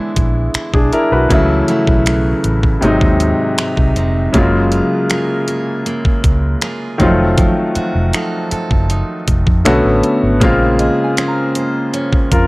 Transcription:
Already playing: grand piano D3 E3 G#3 B3 E4, steel-string acoustic guitar G#3 D4 E4
0.16 fingered electric bass A#1, kick, closed hi-hat
0.54 steel-string acoustic guitar E4, finger snap, muted fingered electric bass stroke, closed hi-hat
0.74 fingered electric bass B1, grand piano D4 G#4, kick
0.93 steel-string acoustic guitar D4, grand piano E4 A#4, closed hi-hat
1.12 fingered electric bass B1, grand piano F#4 B4
1.29 fingered electric bass C#2, grand piano C#3 E3 F#3 A3, steel-string acoustic guitar C#3 E4, kick, closed hi-hat
1.33 grand piano E4
1.68 steel-string acoustic guitar F#3 A3 E4, closed hi-hat
1.87 fingered electric bass B1, kick
2.06 steel-string acoustic guitar A3, finger snap, closed hi-hat
2.44 fingered electric bass A1, closed hi-hat
2.63 kick
2.81 fingered electric bass G#1, steel-string acoustic guitar G#2, grand piano C3 D#3 F#3 G#3, closed hi-hat
2.85 grand piano D#4
3.01 fingered electric bass D#2, kick
3.20 closed hi-hat
3.58 steel-string acoustic guitar D#4, finger snap, closed hi-hat
3.77 fingered electric bass C2, kick
3.96 fingered electric bass F1, steel-string acoustic guitar C4, closed hi-hat
4.33 fingered electric bass F#1, grand piano C#3 F#3 G#3 A#3, steel-string acoustic guitar F#3, kick, closed hi-hat
4.37 grand piano F4
4.72 steel-string acoustic guitar F4, closed hi-hat
5.10 steel-string acoustic guitar A#3 F4 G#4, finger snap, closed hi-hat
5.48 steel-string acoustic guitar G#4, closed hi-hat
5.86 steel-string acoustic guitar A#3, closed hi-hat
6.05 muted fingered electric bass stroke, kick
6.24 fingered electric bass C#2, kick, closed hi-hat
6.62 steel-string acoustic guitar A#3 F4 G#4, finger snap, closed hi-hat
6.98 fingered electric bass F1, grand piano D#3 F#3 G#3 C4, steel-string acoustic guitar F3, kick, closed hi-hat
7.02 grand piano F4
7.07 grand piano A3
7.38 steel-string acoustic guitar F3, kick, closed hi-hat
7.75 steel-string acoustic guitar F#4, muted fingered electric bass stroke, closed hi-hat
7.95 fingered electric bass F1
8.13 steel-string acoustic guitar D#4 F#4 A4, finger snap, closed hi-hat
8.51 steel-string acoustic guitar A4, muted fingered electric bass stroke, closed hi-hat
8.71 fingered electric bass F#1, kick
8.90 steel-string acoustic guitar D#4, closed hi-hat
9.28 fingered electric bass F1, kick, closed hi-hat
9.47 fingered electric bass F2, kick
9.65 fingered electric bass B1, grand piano D3 A3 B3 C#4 F#4, steel-string acoustic guitar B3, finger snap, closed hi-hat
9.85 fingered electric bass A1
10.03 closed hi-hat
10.23 fingered electric bass G#1
10.40 fingered electric bass A#1, grand piano C#3 G#3 A#3 C4, steel-string acoustic guitar A#3, kick, closed hi-hat
10.44 grand piano F4
10.79 steel-string acoustic guitar G#4, synth bell D#5, closed hi-hat
11.04 synth bell G#5
11.17 steel-string acoustic guitar C#4 G#4 C5, finger snap, closed hi-hat
11.28 synth bell A#5
11.55 steel-string acoustic guitar C5, closed hi-hat
11.93 steel-string acoustic guitar C#4, closed hi-hat
12.13 muted fingered electric bass stroke, kick
12.32 fingered electric bass F2, grand piano F4 A#4, kick, closed hi-hat

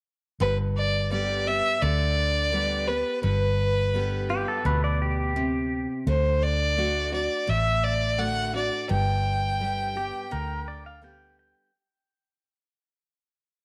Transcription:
0.40 fingered electric bass G1, steel-string acoustic guitar G2, fiddle B4
0.77 fiddle D5
1.11 steel-string acoustic guitar D3 G3 B3 G4, fiddle D5
1.46 steel-string acoustic guitar B3 G4, fiddle E5
1.82 fingered electric bass D2, steel-string acoustic guitar D3, fiddle D5
2.52 steel-string acoustic guitar D3 G3 B3 G4
2.87 steel-string acoustic guitar B3 G4, fiddle B4
3.23 fingered electric bass G1, steel-string acoustic guitar G2, fiddle B4
3.94 steel-string acoustic guitar D3 G3 B3 G4
4.29 steel-string acoustic guitar B3 G4, pedal steel guitar G4
4.48 pedal steel guitar A4
4.65 fingered electric bass D2, steel-string acoustic guitar B2, pedal steel guitar B4
4.84 pedal steel guitar D5
5.02 pedal steel guitar G4
5.36 steel-string acoustic guitar C3
6.07 fingered electric bass D2, steel-string acoustic guitar D3, fiddle C5
6.43 fiddle D5
6.77 steel-string acoustic guitar D3 A3 D4 F#4
7.12 steel-string acoustic guitar D4 F#4, fiddle D5
7.47 fingered electric bass A1, steel-string acoustic guitar A2, fiddle E5
7.84 fiddle D5
8.18 steel-string acoustic guitar D3 A3 D4 F#4, fiddle F#5
8.54 steel-string acoustic guitar D4 F#4, fiddle D5
8.89 fingered electric bass G1, steel-string acoustic guitar G2, fiddle G5
9.59 steel-string acoustic guitar D3 G3 B3 G4
9.96 steel-string acoustic guitar B3 G4, pedal steel guitar G4
10.31 fingered electric bass D2, steel-string acoustic guitar D3, pedal steel guitar A#4
10.68 pedal steel guitar D5
10.86 pedal steel guitar F5
11.02 steel-string acoustic guitar D3 G3 B3 G4, pedal steel guitar G5
11.39 pedal steel guitar G5

